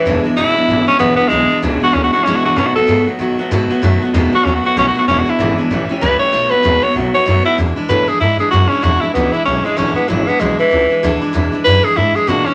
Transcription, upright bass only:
X:1
M:4/4
L:1/8
Q:"Swing" 1/4=192
K:Emix
V:1 name="Upright bass" clef=bass
E,,, z F,,, z G,,, z A,,, z | B,,, z C,, z D,, z B,,, z | B,, z G,, z A,, z G,, z | F,, z E,, z ^D,, z B,,, z |
E,,, z G,,, z A,,, z C,, z | B,,, z ^D,, z B,,, z F,, z | E,, z A,, z G,, z F,, z | E,, z C,, z B,,, z A,,, z |
G,,, z B,,, z C,, z D,, z | E,, z F,, z G,, z ^A,, z |]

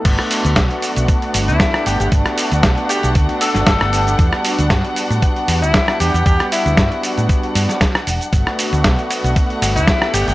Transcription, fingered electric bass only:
X:1
M:4/4
L:1/16
Q:"Swing 16ths" 1/4=116
K:G
V:1 name="Fingered electric bass" clef=bass
G,,, z2 D,, B,,, z2 B,,, z2 G,,, D,, z2 G,,, G,,, | G,,, z2 D,, B,,, z2 B,,, z3 G,,, G,,, G,,,3 | E,, z2 D,, G,, z2 A,, z2 E,, D,, z2 E,, E,, | E,, z2 D,, G,, z2 A,, z2 G,, z3 E,,, z |
G,,, z2 D,, B,,, z2 B,,, z2 G,,, D,, z2 G,,, G,,, |]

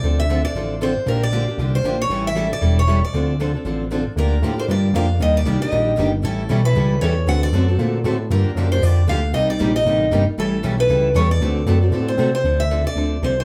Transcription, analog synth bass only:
X:1
M:4/4
L:1/8
Q:"Swing" 1/4=232
K:Dm
V:1 name="Analog synth bass" clef=bass
D,,4 A,,,4 | B,,,4 C,,2 B,,,2 | A,,,4 E,,,4 | D,,4 A,,,4 |
[K:Gm] D,,2 A,,2 G,,2 F,,2 | E,,2 C,, C,, B,,,2 G,,,2 | A,,,2 =B,,,2 ^C,,2 =E,,2 | D,,2 ^F,,2 B,,2 A,,2 |
G,, G,, ^F,,2 =F,,2 D,,2 | C,,2 B,,,2 A,,,2 G,,, G,,, | A,,,2 =B,,,2 ^C,,2 =E,,2 | D,,2 ^F,,2 A,,2 C,2 |
[K:Dm] D,,4 D,,2 C,,2 |]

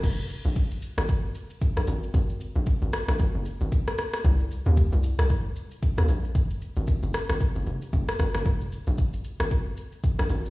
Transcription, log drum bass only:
X:1
M:4/4
L:1/16
Q:"Swing 16ths" 1/4=114
K:Fm
V:1 name="Log drum bass" clef=bass
F,,,3 B,,,2 A,,,2 A,,,3 z3 B,,, A,,,2 | A,,,3 B,,,2 A,,,2 B,,, A,,, _G,,,2 A,,, z4 | C,,3 E,,2 C,,2 C,,3 z3 E,, B,,,2 | _G,,,3 A,,,2 G,,,2 A,,, z G,,, F,,, z G,,, z A,,, G,,, |
F,,,3 B,,,2 A,,,2 A,,,3 z3 B,,, A,,,2 |]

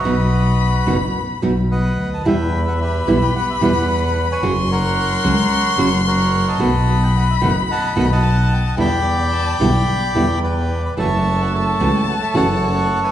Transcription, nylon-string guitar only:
X:1
M:4/4
L:1/8
Q:1/4=110
K:Em
V:1 name="Nylon-string guitar"
[B,,F,B,^DF] z2 [B,,F,B,DF] z [B,,F,B,DF] z2 | [B,,E,G,B,E] z2 [B,,E,G,B,E] z [B,,E,G,B,E] z2 | [^C,F,^A,^CF] z2 [C,F,A,CF] z [C,F,A,CF] z2 | [B,,^D,A,B,F] z2 [B,,D,A,B,F] z [B,,D,A,B,F] z2 |
[B,,D,G,B,E] z2 [B,,D,G,B,E] z [B,,D,G,B,E] z2 | [^C,E,A,^CF] z2 [C,E,A,CF] z [C,E,A,CF] z2 |]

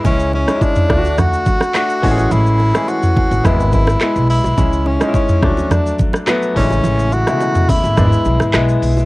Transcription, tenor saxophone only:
X:1
M:4/4
L:1/8
Q:1/4=106
K:A
V:1 name="Tenor saxophone"
C C D2 F4 | E2 F2 E E2 E- | E C C2 D z2 C- | C F2 E4 z |]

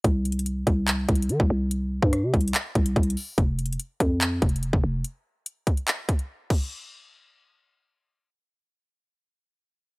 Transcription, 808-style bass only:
X:1
M:4/4
L:1/16
Q:1/4=144
K:Cm
V:1 name="808-style bass" clef=bass
C,,6 C,,4 C,,2 E, C,, C,,2- | C,,3 G,,2 C, C,,2 z2 C,,2 C,,2 z2 | F,,,4 z2 F,,4 F,,,3 F,,, F,,,2 | z16 |
z16 | z16 |]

